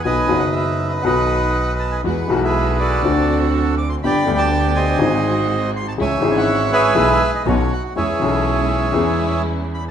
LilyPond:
<<
  \new Staff \with { instrumentName = "Bandoneon" } { \time 4/4 \key e \major \tempo 4 = 121 << { gis''8. fis''16 e''8. dis''16 fis''4. a''16 gis''16 | fis''8. e''8. d''4~ d''16 r8. d'''16 c'''16 | b''8. a''8. gis''4~ gis''16 r8. bis''16 a''16 | gis''8. fis''8. e''4~ e''16 dis''16 cis''8 fis''8 |
e''2. r8 b''16 r16 | } \\ { <b' dis''>4 b'4 <b' dis''>2 | b'8. <gis' b'>8. <fis' a'>2 r8 | <d'' g''>8. d''8. <c'' dis''>2 r8 | <cis'' e''>8. cis''8. <gis' b'>4. fis'4 |
<gis' cis''>2. r4 | } >> }
  \new Staff \with { instrumentName = "String section" } { \time 4/4 \key e \major r1 | <gis e' fis'>8 <gis e' fis'>4. <c' d' fis'>2 | <b d' g'>8 <b d' g'>4. <gis bis fis'>2 | <gis cis' e'>8 <gis cis' e'>4. <gis b e'>8 r8 <b cis' dis'>8 r8 |
<gis cis' e'>8 <gis cis' e'>4. <gis cis' e'>2 | }
  \new Staff \with { instrumentName = "Upright piano" } { \clef bass \time 4/4 \key e \major <b,, b, dis fis b fis'>8 <fis,, fis, dis fis b fis'>4. <b,, b, dis fis b fis'>2 | <e, e gis b fis'>8 <b,, b, e gis b fis'>4. <d, d a c' fis'>2 | <g,, g, d g b g'>8 <d, d g b g'>4. <gis,, gis, dis gis bis fis'>2 | <cis, cis e gis cis' gis'>8 <gis,, gis, e gis cis' gis'>4. <b,, b, e gis b gis'>8 r8 <b,, b, dis b cis' fis'>8 r8 |
<e, e b cis' gis'>8 <b,, b, e b cis' gis'>4. <e, e b cis' gis'>2 | }
  \new Staff \with { instrumentName = "Double bass" } { \clef bass \time 4/4 \key e \major b,,8 fis,,4. b,,2 | e,8 b,,4. d,2 | g,,8 d,4. gis,,2 | cis,8 gis,,4. b,,8 r8 b,,8 r8 |
e,8 b,,4. e,2 | }
>>